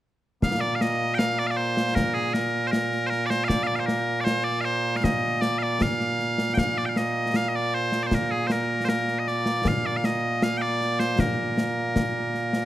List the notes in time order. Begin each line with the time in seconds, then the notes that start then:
0.42 A#2 A#3 F5, concert bass drum, snare
0.61 D5
0.75 F5
0.81 D#5, snare
1.14 F5 G5
1.19 snare
1.39 D5
1.47 D5 F5
1.57 C5
1.77 snare
1.95 A#4, concert bass drum, snare
2.14 G#4
2.34 A#4, snare
2.67 C5
2.71 A#4, snare
2.92 snare
3.06 A#4 C5
3.12 snare
3.26 D5
3.30 C5, snare
3.44 D5 F5
3.49 concert bass drum, snare
3.63 D5 F5
3.76 F5
3.80 C5
3.86 A#4, snare
4.21 C5 D5
4.27 snare
4.44 D5
4.61 F5
4.65 C5
4.97 F5
5.04 D#5, concert bass drum, snare
5.41 D5, snare
5.59 F5
5.63 D5
5.81 F5, concert bass drum, snare
6.00 snare
6.20 snare
6.38 snare
6.54 G5, concert bass drum, snare
6.58 F5
6.78 D5
6.86 F5 G5
6.96 D#5, snare
7.34 F5, snare
7.49 D#5
7.56 D5
7.75 C5
7.92 snare
8.03 C5 D5
8.11 A#4, concert bass drum, snare
8.31 G#4
8.47 C5, snare
8.51 A#4
8.85 A#4 C5, snare
9.08 snare
9.19 D#5
9.27 D5, snare
9.46 snare
9.65 F5, concert bass drum, snare
9.86 D5
9.97 F5
10.04 D#5, snare
10.42 F5, snare
10.57 G5
10.61 D5
10.81 snare
11.00 C5, snare
11.19 A#4, concert bass drum, snare
11.58 snare
11.96 concert bass drum, snare
12.34 snare
12.53 snare